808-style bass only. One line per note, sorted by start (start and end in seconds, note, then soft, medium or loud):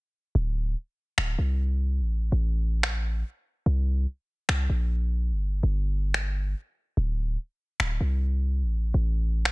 0.35 0.75 D1 medium
1.18 1.37 D1 medium
1.39 2.02 C2 medium
2.01 2.31 A1 medium
2.32 3.23 A1 medium
3.66 4.06 C2 medium
4.49 4.68 C2 medium
4.70 5.33 A#1 medium
5.32 5.62 G1 medium
5.63 6.55 G1 medium
6.97 7.37 D1 medium
7.80 7.99 D1 medium
8.01 8.64 C2 medium
8.63 8.93 A1 medium
8.94 9.52 A1 medium